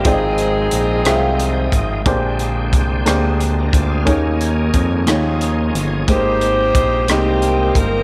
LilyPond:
<<
  \new Staff \with { instrumentName = "Saxophone section" } { \time 6/8 \key aes \major \tempo 4. = 60 << { aes'2~ aes'8 r8 | r2. | r2. | c''4. g'4 bes'8 | } \\ { <c' ees'>2~ <c' ees'>8 r8 | r2. | r2. | <ees' g'>4. <bes c'>4. | } >> }
  \new Staff \with { instrumentName = "Upright piano" } { \time 6/8 \key aes \major <c' f' aes' d'' ees'' g''>4 r8 <c' f' aes' fes'' f'' g''>4 r8 | <bes d' g' aes' c''>4 r8 <bes d' g' aes' c''>4 r8 | <bes des' ees' aes' des''>4 r8 <bes ees' f' aes' des''>4 r8 | <aes bes ees' g' bes' c''>4 r8 <aes bes ees' g' ees''>4 r8 | }
  \new Staff \with { instrumentName = "Upright piano" } { \clef bass \time 6/8 \key aes \major aes,4. r4. | bes,4. r4. | ees4. ees4. | aes,4. r4. | }
  \new Staff \with { instrumentName = "Tonewheel organ" } { \time 6/8 \key aes \major << { r2. | r2 r16 <d' bes'>16 <f' d''>16 <aes' f''>16~ | <aes' f''>16 r2 r8. | r2. | } \\ { <f aes ees' g''>2. | <c d aes c' g''>2. | <ees bes des' g' aes'>4. <f des' ees' aes'>4. | <aes c' g' bes'>2. | } >> }
  \new Staff \with { instrumentName = "Analog synth bass" } { \clef bass \time 6/8 \key aes \major aes,,4 bes,,8 c,4 aes,,8 | bes,,4 c,8 d,4 d,8 | ees,4 f,8 ees,4 g,,8 | aes,,4 bes,,8 c,4 g,,8 | }
  \new DrumStaff \with { instrumentName = "Drums" } \drummode { \time 6/8 <hh bd>8 hh8 hh8 <hh ss>8 hh8 <hh bd>8 | <hh bd>8 hh8 <hh bd>8 <hh ss>8 hh8 <hh bd>8 | <hh bd>8 hh8 <hh bd>8 <hh ss>8 hh8 hh8 | <hh bd>8 hh8 <hh bd>8 <hh ss>8 hh8 <hh bd>8 | }
>>